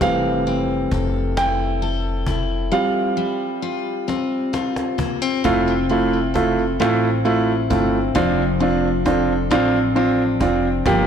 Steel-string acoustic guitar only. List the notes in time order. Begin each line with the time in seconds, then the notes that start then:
Already playing: G3 E4
0.01 C4
0.47 C4
0.92 A4
1.37 E4
1.82 A4
2.27 E4
2.72 G3
3.17 G3
3.62 F4
4.08 C4
4.53 F4
4.98 A#3
5.22 C4
5.44 C4
5.89 E4
6.34 A4
6.80 C4
7.25 E4
7.70 C4
8.15 F3
8.60 D4
9.05 A4
9.51 C4
9.96 D4
10.41 C4
10.86 F3